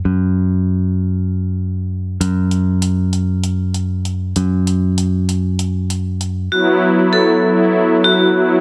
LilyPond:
<<
  \new Staff \with { instrumentName = "Vibraphone" } { \time 7/8 \key fis \minor \tempo 4 = 97 r2. r8 | r2. r8 | r2. r8 | fis'4 a'4. fis'4 | }
  \new Staff \with { instrumentName = "Analog synth pad" } { \time 7/8 \key fis \minor r2. r8 | r2. r8 | r2. r8 | <fis b e'>4. <fis b e'>4. <fis b e'>8 | }
  \new Staff \with { instrumentName = "Picked electric bass" } { \clef bass \time 7/8 \key fis \minor fis,2.~ fis,8 | fis,2.~ fis,8 | fis,2.~ fis,8 | r2. r8 | }
  \new DrumStaff \with { instrumentName = "Drums" } \drummode { \time 7/8 r4 r4 r4. | hh8 hh8 hh8 hh8 hh8 hh8 hh8 | hh8 hh8 hh8 hh8 hh8 hh8 hh8 | r4 r4 r4. | }
>>